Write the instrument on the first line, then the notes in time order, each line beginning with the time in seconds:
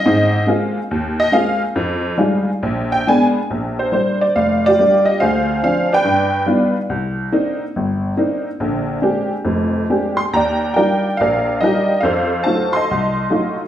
honky-tonk piano
Already playing: D#5
0.06 G#2 C4
0.47 G#3 A#3 C4 F4
0.91 D#2
1.20 D#5
1.32 G#3 A#3 C4 F4 F5
1.76 F2
2.18 G3 G#3 D#4 F4
2.63 A#1
2.92 G5
3.07 G#3 A#3 B3 D4 G#5
3.50 A#1
3.79 C5
3.92 G3 A#3 D4 C5
4.21 D5
4.36 F1 D5 F5
4.66 F4 G4 D5
4.79 G3 A#3 D4
5.05 D#5
5.20 D2 D3 G#4 C5 F5
5.63 F3 C4 D4 F5
5.93 B4 D5 G5
6.04 G2
6.46 G3 B3 D#4 F4
6.89 C2
7.32 A#3 C4 D4 D#4
7.76 G1
8.17 A#3 C4 D4 D#4
8.60 A#1 D3
9.02 G#3 A#3 C4 D4 G4
9.45 F1 F2
9.90 G#3 A#3 C4 D4 G4
10.17 C6
10.33 D#2 D5 G5 A#5
10.74 G3 D4 D#4 F4 A#4 D5 G5
11.17 A#1 D5 F5
11.21 A#4
11.61 G3 D4 D#4 F4 A#4 D#5
11.65 G4
12.01 F2 F5
12.05 A4 C5
12.44 F#3 A3 D#4 F4 A5
12.73 D#5 A5 C6
12.91 C2
13.30 F#3 A3 D#4 F4